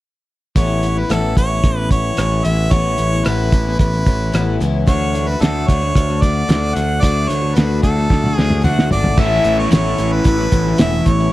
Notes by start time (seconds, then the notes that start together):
0.56 A1 A2 E3 B3 C#4 E4 C#5, kick, closed hi-hat
0.83 E3 B3 C#4 E4, closed hi-hat
0.95 B3 C#4 E4 B4
1.09 A1 A2 E3 B3 C#4 E4 A4, cross-stick, closed hi-hat
1.36 A1 E3 B3 C#4 E4 C#5, kick, closed hi-hat
1.50 B3 C#4 E4
1.64 A1, kick, closed hi-hat
1.77 B3 C#4 E4
1.90 E3 B3 C#4 E4 C#5, kick, closed hi-hat
2.17 A1 A2 E3 B3 C#4 E4, cross-stick, closed hi-hat
2.44 A1 E3 B3 C#4 E4 E5, closed hi-hat
2.71 A1 A2 E3 B3 C#4 E4 C#5, kick, closed hi-hat
2.98 A1 E3 B3 C#4 E4, closed hi-hat
3.12 B3 C#4 E4
3.25 A1 A2 E3 B3 C#4 E4 B4, cross-stick, closed hi-hat
3.51 A1 E3 B3 C#4 E4, kick, closed hi-hat
3.66 B3 C#4 E4
3.79 A1 B4, kick, closed hi-hat
3.93 B3 C#4 E4
4.05 A1 E3 B3 C#4 E4, kick, closed hi-hat
4.32 A1 A2 E3 B3 C#4 E4, cross-stick, closed hi-hat
4.60 C#2 E3 B3 C#4 E4, closed hi-hat
4.87 D2 D3 A3 D4 F#4 C#5, kick, closed hi-hat
5.13 D3 A3 D4 F#4, closed hi-hat
5.27 A3 D4 F#4 B4
5.39 D2 D3 A3 D4 F#4 A4, snare, closed hi-hat
5.68 D2 D3 A3 D4 F#4 C#5, kick, closed hi-hat
5.81 A3 D4 F#4
5.95 D2, kick, closed hi-hat
6.08 A3 D4 F#4
6.21 D3 A3 D4 F#4 D5, kick, closed hi-hat
6.48 D2 D3 A3 D4 F#4, snare, closed hi-hat
6.75 D2 D3 A3 D4 F#4 F#5, closed hi-hat
7.01 D2 D3 A3 D4 F#4 D5, kick, closed hi-hat
7.28 D2 D3 A3 D4 F#4 C#5, closed hi-hat
7.41 A3 D4 F#4
7.55 D2 D3 A3 D4 F#4 B4, snare, closed hi-hat
7.82 D2 D3 A3 D4 F#4 A4, kick, closed hi-hat
7.96 A3 D4 F#4
8.10 D2, kick, snare
8.23 A3 D4 F#4, high tom
8.34 D2 D3 A3 G#4
8.39 D4 F#4, snare
8.50 mid tom
8.63 D2 D3 A3 D4 F#4 F#5, mid tom
8.79 snare
8.91 G#1 D3 A3 D4 F#4 D5, floor tom
9.04 floor tom
9.17 A1 A2 E3 A3 B3 C#4 E4 E5, kick, crash
9.45 A1, closed hi-hat
9.57 B3 C#4 E4 C#5
9.71 A1 A2 E3 B3 C#4 E4 C#5, snare, closed hi-hat
9.98 A1 E3 B3 C#4 E4, closed hi-hat
10.12 B4
10.24 A1 B4, kick, closed hi-hat
10.37 B3 C#4 E4
10.51 A1 E3 B3 C#4 E4, kick, closed hi-hat
10.67 snare
10.78 E1 A2 E3 B3 C#4 E4 E5, snare, closed hi-hat
10.93 B3 C#4 E4
11.06 A1 C#5, kick, closed hi-hat
11.20 B3 C#4 E4